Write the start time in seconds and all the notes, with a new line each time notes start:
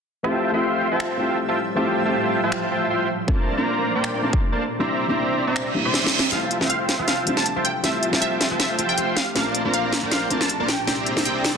0.23 A2 F3 G3 A3 C4 E4 F4 G4 C5 E5 G5 A5
0.51 A3 C4 F4 G4 C5 E5 G5 C6
0.91 F4 C5 E5 G5 A5
1.00 finger snap
1.17 A3 C4 E4 F4 C5 E5 G5 A5
1.21 G4
1.48 F4 C5 E5 G5 A5
1.75 A3 C4 E4 F4 G4 C5 E5 G5 A5
2.03 A3 C4 F4 G4 C5 E5 G5 A5
2.43 F4 C5 E5 G5 A5
2.52 finger snap
2.71 F4 C5 E5 G5 A5
2.90 F4 C5 E5 G5 C6
3.27 A#2 A3 A#3 C4 D4 F4 A#4 C5 D5 A5, kick
3.57 A#3 C4 D4 F4 A#4 C5 D5 A#5
3.95 A#3 A#4 C5 D5 G5
4.04 finger snap
4.21 A3 A#3 C4 D4 F4 A#4 C5 D5 A5
4.33 kick
4.52 A#3 A#4 C5 D5 A5
4.79 C3 G3 A#3 C4 D4 E4 C5 D5 E5 A#5
5.07 G3 A#3 C4 D4 C5 D5 E5 A#5
5.11 E4
5.47 C4 C5 D5 E5 A#5
5.56 finger snap, reverse cymbal
5.74 G3 A#3 D4 E4
5.85 C4 C5 D5 E5 C6
5.94 snare
6.03 G3 A#3 D4 E4, snare
6.13 C4 C5 D5 E5 C6
6.19 C4 E5 A#5, snare
6.23 C5 D5
6.31 F1 F3 G3 A3 C4 E4 F4 G4 C5 E5 F5 G5 A5, snare, closed hi-hat, riser
6.51 closed hi-hat
6.59 F1 G3 A3 C4 F4 C5 E5 G5 C6, snare
6.70 F5, closed hi-hat
6.89 snare, closed hi-hat
6.99 F1 F4 C5 E5 G5 A5
7.08 F5, snare, closed hi-hat
7.25 F1 G3 A3 C4 F4 C5 E5 G5 A5, closed hi-hat
7.29 D4
7.37 A5, snare
7.46 closed hi-hat
7.56 F1 F4 C5 E5 G5 A5
7.65 G5, closed hi-hat
7.83 F1 G3 A3 C4 E4 F4 C5 E5 G5 A5, snare, closed hi-hat
8.03 closed hi-hat
8.11 F1 G3 A3 C4 F4 C5 E5 G5 A5, snare
8.15 E5
8.22 E5, closed hi-hat
8.41 snare, closed hi-hat
8.51 F1 F4 C5 E5 G5 A5
8.60 E5, snare, closed hi-hat
8.79 F1 F4 C5 E5 G5 A5, closed hi-hat
8.89 G5
8.98 F1 F4 C5 E5 G5 C6, closed hi-hat
9.17 F5, snare, closed hi-hat
9.35 A#1 A#2 A3 A#3 C4 D4 F4 A#4 C5 D5 F5 A5, snare, closed hi-hat
9.55 closed hi-hat
9.64 A#1 A#3 C4 D4 F4 A#4 C5 D5 A#5
9.74 F5, closed hi-hat
9.93 snare, closed hi-hat
10.03 A#1 A#3 A#4 C5 D5 G5
10.11 F5, snare, closed hi-hat
10.29 A#1 A3 A#3 C4 D4 F4 A#4 C5 D5 A5, closed hi-hat
10.41 A5, snare
10.49 closed hi-hat
10.60 A#1 A#3 A#4 C5 D5 A5
10.68 G5, snare, closed hi-hat
10.86 C2 C3 A#3 C4 D4 E4 G4 C5 D5 E5 G5 A#5, snare, closed hi-hat
11.06 closed hi-hat
11.15 C2 A#3 C4 D4 E4 C5 D5 E5 A#5, snare
11.19 G4
11.25 G5, closed hi-hat
11.44 snare, closed hi-hat